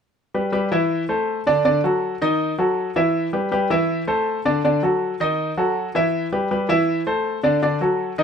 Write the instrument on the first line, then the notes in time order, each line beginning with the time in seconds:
grand piano
0.34 G3 G4 B4
0.52 G3 G4 B4
0.72 E3 E4 E5
1.09 A3 A4 C5
1.47 D3 D4 D5
1.65 D3 D4 D5
1.84 F#3 F#4 A4
2.22 D#3 D#4 D#5
2.58 F#3 F#4 A4
2.96 E3 E4 E5
3.33 G3 G4 B4
3.52 G3 G4 B4
3.70 E3 E4 E5
4.07 A3 A4 C5
4.45 D3 D4 D5
4.64 D3 D4 D5
4.83 F#3 F#4 A4
5.20 D#3 D#4 D#5
5.57 F#3 F#4 A4
5.95 E3 E4 E5
6.32 G3 G4 B4
6.51 G3 G4 B4
6.69 E3 E4 E5
7.07 A3 A4 C5
7.43 D3 D4 D5
7.62 D3 D4 D5
7.81 F#3 F#4 A4
8.18 D#3 D#4 D#5